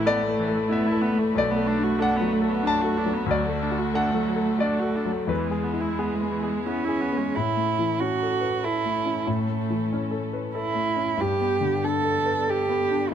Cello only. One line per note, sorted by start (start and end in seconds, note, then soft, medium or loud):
0.00 3.28 A3 medium
3.30 5.25 A3 medium
5.30 6.63 G#3 medium
6.67 7.36 C#4 medium
7.35 8.01 E4 medium
7.99 8.66 F#4 medium
8.64 9.29 E4 medium
9.27 10.23 A3 medium
10.56 11.22 E4 medium
11.20 11.86 G4 medium
11.84 12.51 A4 medium
12.50 13.14 G4 medium